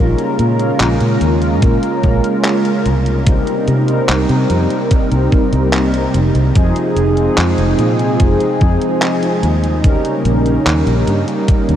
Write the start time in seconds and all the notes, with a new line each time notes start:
Already playing: G#3 C#4
0.00 A#1 C#3 G#3 A#3 F4 A#4
0.18 closed hi-hat
0.39 A#2, closed hi-hat
0.58 G#3 C#4 F4 A#4, closed hi-hat
0.80 A#1, clap, closed hi-hat
1.00 A#2, closed hi-hat
1.21 D#2, closed hi-hat
1.42 closed hi-hat
1.62 A#2, kick, closed hi-hat
1.83 closed hi-hat
2.03 A#1, kick, closed hi-hat
2.24 closed hi-hat
2.44 clap, closed hi-hat
2.65 closed hi-hat
2.86 C2 C3 G3 D#4, closed hi-hat
3.06 closed hi-hat
3.26 G3 C4 D#4 A#4, kick, closed hi-hat
3.47 closed hi-hat
3.68 C3, closed hi-hat
3.87 G3 C4 D#4 A#4, closed hi-hat
4.09 C2, clap, closed hi-hat
4.29 C3, closed hi-hat
4.50 F2, closed hi-hat
4.70 closed hi-hat
4.91 kick, closed hi-hat
5.12 C2, closed hi-hat
5.32 kick, closed hi-hat
5.53 C2, closed hi-hat
5.73 clap, closed hi-hat
5.94 closed hi-hat
6.14 F1 F3 G#3, closed hi-hat
6.35 C2, closed hi-hat
6.55 F2 F3 C4 D#4 G#4, kick, closed hi-hat
6.76 closed hi-hat
6.96 F1, closed hi-hat
7.16 F3 C4 D#4 G#4, closed hi-hat
7.37 F2, clap, closed hi-hat
7.58 F1, closed hi-hat
7.79 A#2, closed hi-hat
7.99 closed hi-hat
8.20 F1, kick, closed hi-hat
8.40 closed hi-hat
8.61 F2, kick, closed hi-hat
8.81 closed hi-hat
9.02 clap, closed hi-hat
9.23 closed hi-hat
9.43 D#2 C#3 G3 A#3, closed hi-hat
9.64 closed hi-hat
9.83 G3 C#4 D#4 A#4, kick, closed hi-hat
10.05 closed hi-hat
10.25 A#1, closed hi-hat
10.44 G3 C#4 D#4 A#4, closed hi-hat
10.66 D#2, clap, closed hi-hat
10.87 A#1, closed hi-hat
11.07 G2, closed hi-hat
11.28 closed hi-hat
11.48 kick, closed hi-hat
11.69 D#2, closed hi-hat